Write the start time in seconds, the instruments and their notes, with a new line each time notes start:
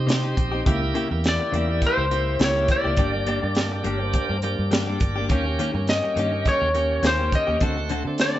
Already playing: fingered electric bass C3, tonewheel organ C4 D#4 G4
0.07 clean electric guitar C3 C4 D#4 G4, snare, closed hi-hat
0.24 clean electric guitar C3 C4 D#4 G4
0.36 fingered electric bass A#1, muted clean electric guitar stroke, kick, closed hi-hat
0.52 clean electric guitar C4 D#4 G4
0.65 fingered electric bass C#2, clean electric guitar C#3 A#3 E4 G4, tonewheel organ A#3 E4 G4, kick, closed hi-hat
0.81 muted clean electric guitar stroke
0.94 clean electric guitar C#3 A#3 E4 G4, closed hi-hat
1.10 fingered electric bass E2, tonewheel organ A#3 E4 G4, muted clean electric guitar stroke
1.24 snare, closed hi-hat
1.29 lead electric guitar D5
1.40 muted clean electric guitar stroke
1.52 fingered electric bass E2, clean electric guitar C#3 A#3 E4 G4, closed hi-hat
1.68 muted clean electric guitar stroke
1.81 muted clean electric guitar stroke, kick, closed hi-hat
1.87 lead electric guitar C5
1.97 fingered electric bass C#2, muted clean electric guitar stroke
2.11 tonewheel organ A#3 E4 G4, muted clean electric guitar stroke, closed hi-hat
2.39 fingered electric bass C#2, clean electric guitar C#3 A#3 E4 G4, snare, closed hi-hat
2.44 lead electric guitar C#5
2.56 clean electric guitar C#3 A#3 E4 G4
2.68 lead electric guitar D5, muted clean electric guitar stroke, kick, closed hi-hat
2.84 fingered electric bass C#2, clean electric guitar A#3 E4 G4
2.96 fingered electric bass G1, clean electric guitar G3 A#3 D4 G4, tonewheel organ A#3 D4 G4, kick, closed hi-hat
3.13 muted clean electric guitar stroke
3.27 clean electric guitar G3 A#3 D4 G4, closed hi-hat
3.43 fingered electric bass G2, tonewheel organ A#3 D4 G4, muted clean electric guitar stroke
3.55 snare, closed hi-hat
3.72 muted clean electric guitar stroke
3.84 fingered electric bass G1, clean electric guitar G3 A#3 D4 G4, closed hi-hat
4.00 lead electric guitar C5, muted clean electric guitar stroke
4.13 muted clean electric guitar stroke, kick, closed hi-hat
4.29 fingered electric bass G2, muted clean electric guitar stroke
4.42 tonewheel organ A#3 D4 G4, muted clean electric guitar stroke, closed hi-hat
4.59 fingered electric bass G2
4.71 clean electric guitar G3 A#3 D4 G4, tonewheel organ G5, snare, closed hi-hat
4.87 clean electric guitar G3 A#3 D4 G4, tonewheel organ D5
5.00 fingered electric bass G1, muted clean electric guitar stroke, kick, closed hi-hat
5.16 clean electric guitar A#3 D4 G4
5.29 fingered electric bass D#2, clean electric guitar D#3 A#3 C#4 G4, tonewheel organ A#3 C#4 G4, kick, closed hi-hat
5.46 muted clean electric guitar stroke
5.59 clean electric guitar D#3 A#3 C#4 G4, closed hi-hat
5.74 fingered electric bass G2, tonewheel organ A#3 C#4 G4, muted clean electric guitar stroke
5.87 lead electric guitar D#5, snare, closed hi-hat
6.04 muted clean electric guitar stroke
6.16 fingered electric bass G2, clean electric guitar D#3 A#3 C#4 G4, closed hi-hat
6.33 muted clean electric guitar stroke
6.45 lead electric guitar C#5, muted clean electric guitar stroke, kick, closed hi-hat
6.61 fingered electric bass D#2, muted clean electric guitar stroke
6.74 tonewheel organ A#3 C#4 G4, muted clean electric guitar stroke, closed hi-hat
7.03 fingered electric bass D#2, clean electric guitar D#3 A#3 C#4 G4, snare, closed hi-hat
7.07 lead electric guitar C5
7.19 clean electric guitar D#3 A#3 C#4 G4
7.32 lead electric guitar D#5, muted clean electric guitar stroke, kick, closed hi-hat
7.47 fingered electric bass D#2, clean electric guitar A#3 C#4 G4
7.60 fingered electric bass D2, clean electric guitar D3 C4 F#4 A4, tonewheel organ A3 C4 F#4, kick, closed hi-hat
7.77 muted clean electric guitar stroke
7.89 clean electric guitar D3 C4 F#4 A4, closed hi-hat
8.05 fingered electric bass D3, tonewheel organ A3 C4 D4, muted clean electric guitar stroke
8.18 lead electric guitar D5, snare, closed hi-hat
8.34 muted clean electric guitar stroke